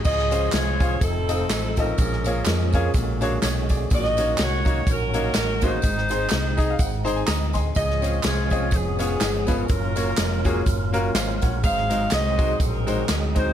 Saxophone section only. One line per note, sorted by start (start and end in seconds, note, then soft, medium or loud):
0.05 0.52 G#4 medium
0.05 0.98 C5 medium
0.05 0.50 D#5 loud
0.53 0.99 F4 medium
0.53 0.99 G#4 medium
0.53 1.02 C#5 loud
1.02 1.95 C4 medium
1.02 1.95 D#4 medium
1.02 1.74 A4 loud
1.78 3.18 C#4 medium
1.78 3.19 F4 medium
1.78 3.18 A#4 loud
3.93 4.40 F#4 medium
3.93 4.37 D#5 loud
4.42 4.88 F#4 medium
4.42 4.89 C#5 loud
4.89 5.81 C#4 medium
4.89 5.81 F#4 medium
4.89 5.64 A#4 loud
5.64 7.04 D#4 medium
5.64 7.04 G#4 medium
5.64 7.09 C5 loud
7.76 8.24 G#4 medium
7.76 8.70 C5 medium
7.76 8.21 D#5 loud
8.25 8.70 F4 medium
8.25 8.70 G#4 medium
8.25 8.74 C#5 loud
8.74 9.67 B3 medium
8.74 9.48 C#4 medium
8.74 9.49 G#4 loud
9.49 10.90 C#4 medium
9.49 10.90 F4 medium
9.49 10.90 A#4 loud
11.65 12.12 C5 medium
11.65 12.09 F5 loud
12.13 12.61 F#4 medium
12.13 13.05 C5 medium
12.13 12.61 D#5 loud
12.61 13.53 D#4 medium
12.61 13.53 F#4 medium
12.61 13.32 A#4 loud
13.36 13.53 C5 loud